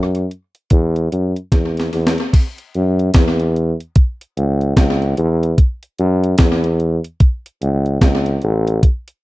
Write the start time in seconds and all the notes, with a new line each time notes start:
Already playing: F#2
0.15 closed hi-hat
0.31 closed hi-hat
0.55 closed hi-hat
0.70 E2, kick, closed hi-hat
0.96 closed hi-hat
1.12 F#2, closed hi-hat
1.36 closed hi-hat
1.52 E2, kick, snare, closed hi-hat
1.77 snare, closed hi-hat
1.93 E2, open hi-hat
2.07 snare
2.18 closed hi-hat
2.33 kick, closed hi-hat, crash
2.58 closed hi-hat
2.75 F#2, closed hi-hat
2.99 closed hi-hat
3.14 E2, kick, snare, closed hi-hat
3.40 closed hi-hat
3.56 closed hi-hat
3.80 closed hi-hat
3.96 kick, closed hi-hat
4.21 closed hi-hat
4.37 C#2, closed hi-hat
4.61 closed hi-hat
4.77 C#2, kick, snare, closed hi-hat
5.02 closed hi-hat
5.17 E2, closed hi-hat
5.43 closed hi-hat
5.58 kick, closed hi-hat
5.83 closed hi-hat
5.99 F#2, closed hi-hat
6.24 closed hi-hat
6.38 E2, kick, snare, closed hi-hat
6.64 closed hi-hat
6.80 closed hi-hat
7.04 closed hi-hat
7.20 kick, closed hi-hat
7.46 closed hi-hat
7.62 C#2, closed hi-hat
7.86 closed hi-hat
8.01 C#2, kick, snare, closed hi-hat
8.26 closed hi-hat
8.42 A1, closed hi-hat
8.67 closed hi-hat
8.83 kick, closed hi-hat
9.08 closed hi-hat